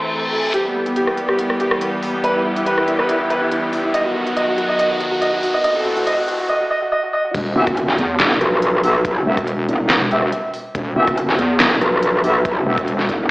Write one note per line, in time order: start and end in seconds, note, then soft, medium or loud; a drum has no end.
0.00 0.52 E3 medium
0.00 0.52 A3 medium
0.00 0.52 C4 medium
0.00 0.52 A4 medium
0.00 0.08 A4 medium
0.00 reverse cymbal medium
0.11 0.19 A4 medium
0.33 0.41 A4 medium
0.44 0.51 A4 medium
0.54 3.91 E3 medium
0.54 3.91 G3 medium
0.54 5.60 B3 medium
0.54 3.91 G4 medium
0.54 0.62 G4 medium
0.54 closed hi-hat medium
0.54 riser medium
0.65 0.72 B3 medium
0.75 0.83 B3 medium
0.86 0.94 B3 medium
0.86 closed hi-hat medium
0.96 1.04 G4 medium
0.96 closed hi-hat medium
1.07 1.15 B3 medium
1.07 cross-stick soft
1.17 1.26 B3 medium
1.17 closed hi-hat medium
1.29 1.36 G4 medium
1.29 cross-stick medium
1.39 1.47 B3 medium
1.39 closed hi-hat medium
1.50 1.57 B3 medium
1.50 cross-stick medium
1.60 1.68 G4 medium
1.60 closed hi-hat medium
1.71 1.79 B3 medium
1.71 cross-stick medium
1.81 1.89 B3 medium
1.81 closed hi-hat medium
2.03 2.11 B3 medium
2.03 open hi-hat medium
2.14 2.21 B3 medium
2.24 2.32 B4 loud
2.24 closed hi-hat medium
2.35 2.42 E4 medium
2.45 2.53 E4 medium
2.56 2.64 E4 medium
2.56 closed hi-hat medium
2.66 2.75 B4 medium
2.66 closed hi-hat medium
2.78 2.85 E4 medium
2.78 cross-stick soft
2.88 2.96 E4 medium
2.88 closed hi-hat medium
2.99 3.06 B4 medium
2.99 cross-stick soft
3.09 3.17 E4 medium
3.09 closed hi-hat medium
3.20 3.28 E4 medium
3.30 3.38 B4 medium
3.30 closed hi-hat medium
3.42 3.49 E4 medium
3.51 3.60 E4 medium
3.51 closed hi-hat medium
3.73 3.81 E4 medium
3.73 open hi-hat medium
3.84 3.91 E4 medium
3.94 5.63 D#3 medium
3.94 5.63 F#3 medium
3.94 5.63 F#4 medium
3.94 4.02 D#5 medium
3.94 closed hi-hat medium
4.05 4.13 F#4 medium
4.15 4.24 F#4 medium
4.26 4.34 F#4 medium
4.26 closed hi-hat soft
4.36 4.45 D#5 medium
4.36 closed hi-hat medium
4.48 4.55 F#4 medium
4.58 4.66 F#4 medium
4.58 closed hi-hat medium
4.69 4.76 D#5 medium
4.79 4.87 D#5 loud
4.79 closed hi-hat medium
4.90 4.98 F#4 medium
5.00 5.09 F#4 medium
5.00 closed hi-hat soft
5.12 5.19 F#4 medium
5.22 5.30 D#5 medium
5.22 closed hi-hat medium
5.33 5.40 F#4 medium
5.43 5.51 F#4 medium
5.43 open hi-hat medium
5.54 5.61 D#5 medium
5.64 6.49 E3 medium
5.64 6.49 A3 medium
5.64 6.49 C4 medium
5.64 6.49 A4 medium
5.64 5.72 D#5 loud
5.64 closed hi-hat medium
5.75 5.83 F#4 medium
5.85 5.94 F#4 medium
5.97 6.04 F#4 medium
5.97 closed hi-hat medium
6.07 6.15 D#5 loud
6.07 closed hi-hat medium
6.18 6.25 F#4 medium
6.28 6.36 F#4 medium
6.28 closed hi-hat medium
6.39 6.47 F#4 medium
6.49 6.57 D#5 loud
6.61 6.68 F#4 medium
6.71 6.79 D#5 loud
6.82 6.89 F#4 medium
6.92 7.00 D#5 loud
7.03 7.10 F#4 medium
7.13 7.21 D#5 loud
7.25 7.32 F#4 medium
7.34 7.54 E1 loud
7.34 kick loud
7.34 closed hi-hat medium
7.34 crash loud
7.34 impact medium
7.56 7.97 F#1 loud
7.56 7.66 B3 loud
7.56 7.66 G4 medium
7.56 7.66 E5 loud
7.67 kick loud
7.67 cross-stick medium
7.67 closed hi-hat medium
7.77 closed hi-hat medium
7.88 snare soft
7.98 8.18 E2 medium
7.98 closed hi-hat medium
8.20 8.39 E1 loud
8.20 snare loud
8.20 clap medium
8.20 closed hi-hat medium
8.41 8.82 B1 loud
8.41 cross-stick medium
8.41 closed hi-hat medium
8.62 closed hi-hat medium
8.83 9.24 B1 loud
8.83 8.94 B3 medium
8.83 8.94 G4 medium
8.83 8.94 E5 medium
8.83 open hi-hat loud
9.05 kick loud
9.05 closed hi-hat medium
9.26 9.67 E1 medium
9.26 9.36 B3 medium
9.26 9.36 G4 medium
9.26 9.36 E5 medium
9.37 kick loud
9.37 cross-stick medium
9.37 closed hi-hat medium
9.47 closed hi-hat medium
9.69 9.99 E1 loud
9.69 closed hi-hat medium
9.90 snare loud
9.90 clap loud
9.90 closed hi-hat medium
10.01 10.31 E1 loud
10.11 10.21 B3 medium
10.11 10.21 G4 medium
10.11 10.21 E5 loud
10.11 closed hi-hat medium
10.22 cross-stick medium
10.32 closed hi-hat medium
10.54 open hi-hat medium
10.75 10.95 E1 loud
10.75 kick loud
10.75 closed hi-hat medium
10.96 11.37 F#1 loud
10.96 11.06 B3 medium
10.96 11.06 G4 medium
10.96 11.06 E5 loud
11.07 kick loud
11.07 cross-stick medium
11.07 closed hi-hat medium
11.18 closed hi-hat medium
11.29 snare soft
11.39 11.58 E2 loud
11.39 closed hi-hat medium
11.60 11.80 E1 medium
11.60 snare loud
11.60 clap medium
11.60 closed hi-hat medium
11.81 12.22 B1 loud
11.81 cross-stick medium
11.81 closed hi-hat medium
12.03 closed hi-hat medium
12.24 12.65 B1 medium
12.24 12.34 B3 medium
12.24 12.34 G4 medium
12.24 12.34 E5 medium
12.24 open hi-hat medium
12.45 kick loud
12.45 closed hi-hat medium
12.66 13.07 E1 loud
12.66 12.77 B3 medium
12.66 12.77 G4 medium
12.66 12.77 E5 medium
12.78 kick loud
12.78 cross-stick medium
12.78 closed hi-hat soft
12.88 closed hi-hat medium
12.99 snare soft
13.09 13.29 E1 loud
13.09 kick medium
13.09 closed hi-hat medium